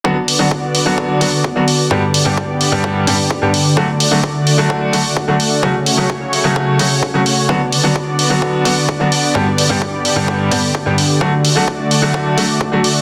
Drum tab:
HH |-o-o-o-o|-o-o-o-o|-o-o-o-o|-o-o-o-o|
BD |o-o-o-o-|o-o-o-o-|o-o-o-o-|o-o-o-o-|

HH |-o-o-o-o|-o-o-o-o|-o-o-o-o|
BD |o-o-o-o-|o-o-o-o-|o-o-o-o-|